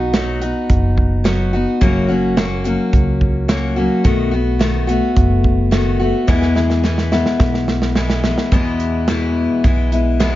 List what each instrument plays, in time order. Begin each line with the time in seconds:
Already playing: upright bass B1, steel-string acoustic guitar B3 D#4 F#4
0.13 steel-string acoustic guitar F#3 B3 D#4 F#4, snare, closed hi-hat
0.41 steel-string acoustic guitar B3 D#4 F#4, closed hi-hat
0.70 upright bass F#1, kick, closed hi-hat
0.98 kick
1.24 steel-string acoustic guitar F#3 B3 D#4 F#4, snare, closed hi-hat
1.53 steel-string acoustic guitar B3 D#4 F#4
1.81 upright bass F#1, steel-string acoustic guitar F#2 C#3 F#3 A#3 C#4 F#4, kick, closed hi-hat
2.08 steel-string acoustic guitar F#3 A#3 C#4 F#4
2.37 steel-string acoustic guitar F#3 A#3 C#4 F#4, snare, closed hi-hat
2.64 steel-string acoustic guitar F#3 A#3 C#4 F#4, closed hi-hat
2.93 upright bass C#2, kick, closed hi-hat
3.21 kick
3.48 steel-string acoustic guitar F#3 A#3 C#4 F#4, snare, closed hi-hat
3.76 steel-string acoustic guitar F#3 A#3 C#4 F#4
4.04 upright bass B1, steel-string acoustic guitar B2 D#3 A3 B3 F#4, kick, closed hi-hat
4.31 steel-string acoustic guitar A3 B3 F#4
4.59 steel-string acoustic guitar D#3 A3 B3 F#4, snare, closed hi-hat
4.87 steel-string acoustic guitar A3 B3 F#4, closed hi-hat
5.16 upright bass F#1, kick, closed hi-hat
5.44 kick
5.71 steel-string acoustic guitar D#3 A3 B3 F#4, snare, closed hi-hat
5.99 steel-string acoustic guitar A3 B3 F#4
6.27 steel-string acoustic guitar E2 B2 E3 G#3 B3 E4, upright bass E2, kick, snare
6.42 snare
6.55 steel-string acoustic guitar E3 G#3 B3 E4, snare
6.70 snare
6.83 steel-string acoustic guitar E3 G#3 B3 E4, snare
6.98 snare
7.12 steel-string acoustic guitar E3 G#3 B3 E4, snare
7.26 snare
7.40 upright bass B1, kick, snare
7.54 snare
7.68 snare
7.82 snare
7.95 steel-string acoustic guitar E3 G#3 B3 E4, snare
8.10 snare
8.24 steel-string acoustic guitar E3 G#3 B3 E4, snare
8.38 snare
8.52 steel-string acoustic guitar E2 B2 E3 G#3 B3 E4, upright bass E2, kick, closed hi-hat
8.80 closed hi-hat
9.08 steel-string acoustic guitar E2 B2 E3 G#3 B3 E4, snare, closed hi-hat
9.64 upright bass B1, steel-string acoustic guitar E3 G#3 B3 E4, kick, closed hi-hat
9.92 steel-string acoustic guitar E3 G#3 B3 E4, closed hi-hat
10.20 steel-string acoustic guitar E2 B2 E3 G#3 B3 E4, snare, closed hi-hat